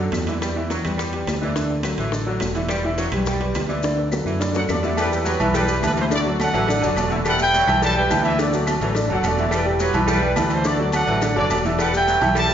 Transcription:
0.00 D3 F#3 F#4 A4
0.12 E2, high bongo, low bongo, high conga, high timbale, low timbale, claves, maracas
0.27 D3 E3 E4 E5, high bongo, high conga, high timbale, maracas
0.41 G3 G4 B4, high bongo, high timbale, claves, maracas
0.56 E3 E4 E5, high bongo, high conga
0.70 F#3, high bongo, high conga, high timbale, low timbale, maracas
0.85 E2 G3 G4 B4, high bongo, high conga, low conga, high timbale, claves, maracas
0.98 G3, high bongo, high conga, low conga, maracas
1.12 G3 G4 B4, high conga, high timbale
1.27 D2, high bongo, low bongo, high conga, high timbale, low timbale, claves, maracas
1.41 D3 E3 D4 D5, high bongo, maracas
1.56 D3 D4 D5, high bongo, high timbale, maracas
1.69 high bongo, high conga
1.83 F#3 F#4 A4, high bongo, high conga, high timbale, low timbale, claves, maracas
1.98 A1 E3, high bongo, high conga, high timbale, maracas
2.12 D3 D4 D5, high bongo, high conga, maracas
2.26 D3 F#3 F#4 A4, high conga
2.40 E1, high bongo, low bongo, high conga, high timbale, low timbale, claves, maracas
2.55 D3 E3 E4 E5, high bongo, high conga, high timbale, maracas
2.69 G3 G4 B4, high bongo, high conga, high timbale, claves, maracas
2.84 E3 E4 E5, high bongo, high conga
2.98 F#3, high bongo, high conga, high timbale, low timbale, maracas
3.12 B1 G3 G4 B4, high bongo, high conga, low conga, high timbale, claves, maracas
3.26 G3, high bongo, high conga, low conga, maracas
3.40 G3 G4 B4, high conga, high timbale
3.54 D2, high bongo, low bongo, high conga, high timbale, low timbale, claves, maracas
3.69 D3 E3 D4 D5, high bongo, high conga, maracas
3.83 D3 D4 D5, high bongo, high conga, high timbale, maracas
3.98 high bongo, high conga, high timbale
4.12 F#3 F#4 A4, high bongo, high conga, high timbale, claves, maracas
4.25 F#2 E3, high bongo, high conga, maracas
4.39 D3 D4 D5, high bongo, high conga, low timbale, maracas
4.54 D3 F#3 F#4 A4 F#5, high bongo, high conga, maracas
4.69 E2 F#4 A4 D5, high bongo, high conga, low timbale, claves, maracas
4.83 D3 E3 E4 E5, low bongo, high conga, low timbale, maracas
4.97 G3 E4 G4 B4, cowbell, high conga, low agogo, claves, maracas
5.11 G3 G4 A4 B4, high conga, maracas
5.25 F#3 E4 G4 B4, cowbell, high conga, low timbale, low agogo, maracas
5.40 B1 E3 E4 E5, cowbell, high conga, low conga, low agogo, claves, maracas
5.54 G3 E4 G4 B4, cowbell, high conga, low conga, low agogo, maracas
5.68 G3 G4 B4, high conga, maracas
5.82 D2 E3 E4 B4 E5, cowbell, high conga, low timbale, low agogo, claves, maracas
5.97 E3 C5, cowbell, high conga, low agogo, maracas
6.11 D3 D4 F#4 A4 D5, cowbell, high conga, maracas
6.26 F#3 F#4 A4 D5, high conga
6.40 A4 D5 F#5, cowbell, high conga, low timbale, low agogo, claves, maracas
6.54 A1 E3 F#3 F#4 A4, cowbell, high conga, low agogo, maracas
6.68 D3 D4 D5, cowbell, high conga, maracas
6.81 F#1 D3 F#3 F#4 A4 D5, low agogo, maracas
6.96 E1, cowbell, high conga, low timbale, low agogo, claves, maracas
7.09 D3 E3 E4 E5, high conga, maracas
7.25 G3 B4 F#5, cowbell, high conga, low agogo, claves, maracas
7.39 G3 G4 B4 E5 G5, high conga, maracas
7.54 F#3, cowbell, high conga, low timbale, low agogo, maracas
7.67 B1 E3 E4 E5, cowbell, high conga, low conga, low agogo, claves, maracas
7.82 G3 E5 A5, cowbell, high conga, low agogo, maracas
7.96 G3 G4 B4 E5 G5, high conga
8.10 D2 E3 E4 E5, cowbell, high conga, low timbale, low agogo, claves, maracas
8.24 E3 E5, cowbell, high conga, low agogo, maracas
8.39 D3 D4 F#4 A4 D5, cowbell, maracas
8.53 F#3 F#4 A4, high conga, maracas
8.67 cowbell, high conga, low timbale, low agogo, claves, maracas
8.81 A1 E3 F#3 F#4 A4, cowbell, high conga, low agogo, maracas
8.95 D3 D4 D5, cowbell, high conga, maracas
9.09 F#1 D3 F#3 F#4 A4 F#5, high conga, low agogo
9.23 E1 A4, cowbell, high conga, low timbale, low agogo, claves, maracas
9.27 F#4 D5
9.38 D3 E3 E4 E5, high conga, maracas
9.51 G3 E4 G4 B4, cowbell, high conga, low agogo, claves, maracas
9.66 G3 G4 A4 B4, high conga
9.80 F#3 E4 G4 B4, cowbell, high conga, low timbale, low agogo, maracas
9.94 B1 E3 E4 E5, cowbell, high conga, low conga, low agogo, claves, maracas
10.07 G3 E4 G4 B4, cowbell, high conga, low conga, low agogo, maracas
10.22 G3 G4 B4
10.36 D2 E3 E4 B4 E5, cowbell, high conga, low timbale, low agogo, claves, maracas
10.50 E3 C5, cowbell, low agogo, maracas
10.64 D3 D4 F#4 A4 D5, cowbell, high conga, maracas
10.79 F#3 F#4 A4 D5, high conga
10.92 A4 D5 F#5, cowbell, high conga, low timbale, low agogo, claves, maracas
11.07 A1 E3 F#3 F#4 A4, cowbell, high conga, low agogo, maracas
11.22 D3 D4 D5, cowbell, maracas
11.36 F#1 D3 F#3 F#4 A4 D5, high conga, low agogo
11.50 E1, cowbell, high conga, low timbale, low agogo, claves, maracas
11.65 D3 E3 E4 E5, high conga, maracas
11.79 G3 B4 F#5, cowbell, high conga, low agogo, claves, maracas
11.93 G3 G4 B4 E5 G5, high conga, maracas
12.07 F#3, cowbell, high conga, low timbale, low agogo, maracas
12.21 B1 E3 E4 E5, cowbell, high conga, low conga, low agogo, claves, maracas
12.35 G3 E5 A5, cowbell, low agogo, maracas
12.49 G3 G4 B4, maracas

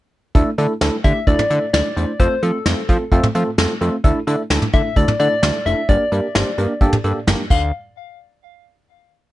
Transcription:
0.35 D2 A3 D4 E4 A4, kick, closed hi-hat
0.58 D3 A3 D4 E4 A4, closed hi-hat
0.81 D2 A3 D4 E4 A4, snare, closed hi-hat
1.04 D3 A3 D4 E4 G4 E5, kick, closed hi-hat
1.27 D2 A3 D4 E4 A4 D5, kick, closed hi-hat
1.39 mid tom
1.50 D3 A3 D4 E4 A4, closed hi-hat
1.73 D2 A3 D4 E4 A4 D5, snare, closed hi-hat
1.97 E2 A3 D4 E4 C5, closed hi-hat
2.20 F2 A3 C4 F4 A4 C5, kick, closed hi-hat
2.43 F3 A3 C4 F4 A4, closed hi-hat
2.66 F2 A3 C4 F4 A4, snare, closed hi-hat
2.89 F3 A3 C4 F4 A4, kick, closed hi-hat
3.12 F2 A3 C4 F4 A4, kick, closed hi-hat
3.23 mid tom
3.35 F3 A3 C4 F4 A4, closed hi-hat
3.58 F2 A3 C4 F4 A4, snare, closed hi-hat
3.81 F2 A3 C4 F4 A4, closed hi-hat
4.04 D2 A3 D4 E4 A4, kick, closed hi-hat
4.27 D3 A3 D4 E4 A4, closed hi-hat
4.50 D2 A3 D4 E4 A4, snare, closed hi-hat
4.62 mid tom
4.73 D3 A3 D4 E4 A4 E5, kick, closed hi-hat
4.96 D2 A3 D4 E4 A4 D5, kick, closed hi-hat
5.08 mid tom
5.19 D3 A3 D4 E4 A4 D5, closed hi-hat
5.42 D2 A3 D4 E4 A4, snare, closed hi-hat
5.66 F1 A3 D4 E4 A4 E5, closed hi-hat
5.89 G1 A#3 D4 G4 A#4 D5, kick, closed hi-hat
6.12 G2 A#3 D4 G4 A#4, closed hi-hat
6.35 G1 A#3 D4 G4 C5, snare, closed hi-hat
6.58 G2 A#3 D4 G4 A#4, closed hi-hat
6.81 G1 A#3 D4 G4 A4, kick, closed hi-hat
6.93 mid tom
7.04 G2 A#3 D4 G4 A4, closed hi-hat
7.27 G1 A#3 D4 G4 A#4, snare, closed hi-hat, mid tom
7.50 D2 F5, kick, crash

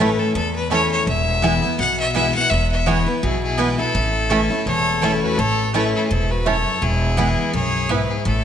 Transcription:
Already playing: A1 A2
0.00 E3 A3 C#4 E4 B4
0.19 A4
0.35 E2 A4
0.56 B4
0.70 E3 A3 C#4 E4 C#5 A5
0.91 C#5
1.07 E1 E2 E5
1.42 E3 G#3 B3 E4 B4 G#5
1.62 B3 E4
1.79 B1 B2 F#5
2.00 E5
2.14 E3 G#3 B3 E4 B4 E5 G#5
2.35 B3 E4 F#5
2.50 E1 E2 E5
2.72 E5
2.86 E3 G#3 B3 E4 B4 C#5 G#5
3.06 B3 E4 B4
3.23 B1 B2 E4 G#4
3.42 E4 G#4
3.57 E3 G#3 B3 E4 B4 G#5
3.78 B3 E4 A4
3.94 A1 A2
4.30 E3 A3 C#4 E4 C#5 A5
4.50 C#4 E4
4.66 E1 E2 A4 C#5
5.01 E3 A3 C#4 E4 A4 C#5 A5
5.23 F#4 B4
5.38 A1 A2 A4 C#5
5.73 E3 A3 C#4 E4 B4 C#5 A5
5.95 E4 A4
6.06 E4 G#4
6.10 E1 G#2 E4 A4
6.31 F#4 B4
6.45 F#2 A3 C#4 E4 A4 C#5 A5
6.81 E1 E2 E4 G#4
7.17 E3 G#3 B3 E4 B4 G#5
7.53 B1 F#2 G#4 C#5
7.89 G#2 B3 E4 B4 G#5
8.10 E4 G#4
8.25 A1 A2 E4 A4

